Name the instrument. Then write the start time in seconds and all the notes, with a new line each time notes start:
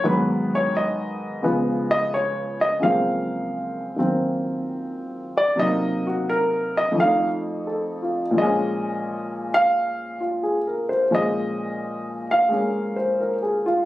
grand piano
0.04 G#2 D#3 F#3 B3 B4
0.55 C#5
0.77 D#5
1.42 C#2 C#3 F3 B3
1.91 D#5
2.14 C#5
2.61 D#5
2.79 F#2 C#3 F3 G#3 A#3 F5
2.84 C4
3.96 D#3 F#3 A#3 C4
5.37 D5
5.56 C3 F#3 A#3 D#5
5.60 D#4
6.07 F#4
6.29 A#4
6.77 D#5
6.91 F2
6.96 F3 A3
7.00 D#4 F5
7.67 A4
8.02 F4
8.31 A#2 F3
8.38 G#3 C#4 D#5
9.54 F5
10.20 F4
10.43 G#4
10.67 A#4
10.89 C5
11.11 A#2 F3 G#3 C#4 D#5
12.31 F5
12.49 G#3 A#3 C#4
12.96 C5
13.21 A#4
13.43 G#4
13.66 F4